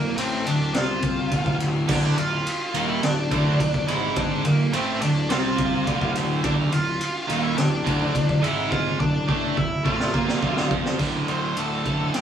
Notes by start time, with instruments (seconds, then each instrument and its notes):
Already playing: picked electric bass D1, distorted electric guitar D2, lead electric guitar A#3 A#4
0.17 picked electric bass A1, distorted electric guitar A2 A3, lead electric guitar C4 C5, ride
0.46 picked electric bass D1, distorted electric guitar D2, lead electric guitar D4 D5, ride
0.74 picked electric bass C2, distorted electric guitar C3 C4, lead electric guitar F4 F5, snare, ride
1.02 kick, ride
1.31 picked electric bass D1, distorted electric guitar D2 D3, kick, ride
1.46 kick
1.60 snare, ride
1.88 picked electric bass D1, distorted electric guitar D2 D3, lead electric guitar D4 D5, kick, crash
2.17 picked electric bass D1, distorted electric guitar D2, lead electric guitar F4 F5, ride
2.46 ride
2.74 picked electric bass D#1, distorted electric guitar D#2 D#3, ride
2.88 lead electric guitar E4 E5
3.03 picked electric bass D1, distorted electric guitar D2, lead electric guitar D4 D5, snare, ride
3.31 picked electric bass D1, distorted electric guitar D2 D3, kick, ride
3.59 picked electric bass D1, distorted electric guitar D2, kick, ride
3.74 kick
3.88 picked electric bass G#1, distorted electric guitar G#2 G#3, lead electric guitar E4 E5, snare, ride
4.16 lead electric guitar D4 D5, kick, ride
4.45 picked electric bass D1, distorted electric guitar D2, lead electric guitar A#3 A#4, ride
4.73 picked electric bass A1, distorted electric guitar A2 A3, lead electric guitar C4 C5, ride
5.01 picked electric bass D1, distorted electric guitar D2, lead electric guitar D4 D5, ride
5.30 picked electric bass C2, distorted electric guitar C3 C4, lead electric guitar F4 F5, snare, ride
5.58 kick, ride
5.87 picked electric bass D1, distorted electric guitar D2 D3, kick, ride
6.01 kick
6.15 snare, ride
6.44 picked electric bass D1, distorted electric guitar D2 D3, lead electric guitar D4 D5, kick, ride
6.72 picked electric bass D1, distorted electric guitar D2, lead electric guitar F4 F5, ride
7.01 ride
7.29 picked electric bass D#1, distorted electric guitar D#2 D#3, ride
7.43 lead electric guitar E4 E5
7.56 picked electric bass D1, distorted electric guitar D2, lead electric guitar D4 D5, snare, ride
7.86 picked electric bass D1, distorted electric guitar D2 D3, kick, ride
8.15 picked electric bass D1, distorted electric guitar D2, kick, ride
8.29 kick
8.43 picked electric bass G#1, distorted electric guitar G#2 G#3, lead electric guitar E4 E5, ride
8.71 lead electric guitar F4 F5, kick
9.00 picked electric bass D1, distorted electric guitar D2, lead electric guitar D4 D5, kick
9.28 picked electric bass A1, distorted electric guitar A2 A3, lead electric guitar D4 D5, kick
9.57 picked electric bass D1, distorted electric guitar D2, lead electric guitar E4 E5, kick
9.85 picked electric bass A1, distorted electric guitar A2 A3, lead electric guitar F4 F5, kick
10.00 snare
10.14 picked electric bass A#1, distorted electric guitar A#2 A#3, kick
10.28 snare
10.42 picked electric bass D1, distorted electric guitar D2 D3, kick
10.57 snare
10.71 picked electric bass F1, distorted electric guitar F2 F3, kick
10.85 snare
10.99 picked electric bass D1, distorted electric guitar D2 A2 D3, kick, crash
11.28 picked electric bass D1, distorted electric guitar D2 A2 D3, lead electric guitar C5, ride
11.57 picked electric bass D1, distorted electric guitar D2 A2 D3, lead electric guitar A4, ride
11.86 picked electric bass D1, distorted electric guitar D2 A2 D3, kick, ride
12.14 picked electric bass D1, distorted electric guitar D2 A2 D3, lead electric guitar G4, snare, ride